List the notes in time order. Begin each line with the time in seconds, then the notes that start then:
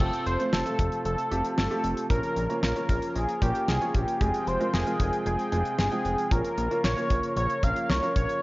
0.00 F1 C3 F3 A3 C4 F4 A4, kick, crash
0.13 closed hi-hat
0.26 F1 C5, closed hi-hat
0.39 A3 C4 F4 C5, closed hi-hat
0.52 F1 A4, snare
0.66 A3 C4 F4 A4, closed hi-hat
0.79 F1, kick, closed hi-hat
0.92 closed hi-hat
1.05 F1 A4, closed hi-hat
1.18 closed hi-hat
1.31 F1 A3 C4 F4 G4, closed hi-hat
1.44 closed hi-hat
1.58 G1 A4, snare
1.71 A3 C4 F4 G4, closed hi-hat
1.84 F1, closed hi-hat
1.97 closed hi-hat
2.10 A#1 C#3 A#3 C#4 F4 A#4, kick, closed hi-hat
2.23 closed hi-hat
2.37 A#1, closed hi-hat
2.50 A#3 C#4 F4 A#4, closed hi-hat
2.63 A#1 A#4, snare
2.76 A#3 C#4 F4 A#4, closed hi-hat
2.89 A#1, kick, closed hi-hat
3.02 closed hi-hat
3.15 A#1 G#4, closed hi-hat
3.29 closed hi-hat
3.42 A#1 A#3 C#4 F4 G4 A#4, kick, closed hi-hat
3.55 closed hi-hat
3.68 C2 G#4, snare
3.81 A#3 C#4 F4 C#5, closed hi-hat
3.94 A#1 G4, kick, closed hi-hat
4.08 closed hi-hat
4.21 F1 C3 F3 G#3 C4 F4 G4 G#4 G5, kick, closed hi-hat
4.34 closed hi-hat
4.47 F1 C5, closed hi-hat
4.60 G#3 C4 F4 A#4, closed hi-hat
4.73 F1 G#4, snare
4.87 G#3 C4 F4 A#4, closed hi-hat
5.00 F1, kick, closed hi-hat
5.13 closed hi-hat
5.26 F1 G#4, closed hi-hat
5.39 closed hi-hat
5.52 F1 G#3 C4 F4 G#4, closed hi-hat
5.65 closed hi-hat
5.79 G1 G#4, snare
5.92 G#3 C4 F4 G5, closed hi-hat
6.05 F1, closed hi-hat
6.18 closed hi-hat
6.31 A#1 C#3 F3 A#3 C#4 F4 A#4, kick, closed hi-hat
6.45 closed hi-hat
6.58 A#1, closed hi-hat
6.71 A#3 C#4 F4 A#4, closed hi-hat
6.84 A#1 C#5, snare
6.97 A#3 C#4 F4 A#4, closed hi-hat
7.10 A#1, kick, closed hi-hat
7.23 closed hi-hat
7.37 A#1 C#5, closed hi-hat
7.50 closed hi-hat
7.63 A#1 A#3 C#4 F4 A#4 F5, kick, closed hi-hat
7.76 closed hi-hat
7.89 C2 C#5, snare
8.02 A#3 C#4 F4 A#4, closed hi-hat
8.16 A#1 C#5, kick, closed hi-hat
8.29 closed hi-hat